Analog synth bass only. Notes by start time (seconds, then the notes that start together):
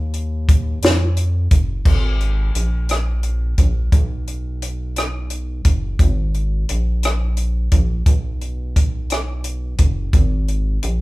Already playing: D#2
0.84 F2
1.52 F#1
1.86 G#1
2.56 A#1
3.59 A#1
3.93 B1
5.66 F#1
6.00 G#1
6.71 A#1
7.73 A#1
8.07 B1
9.80 F#1
10.14 G#1
10.84 A#1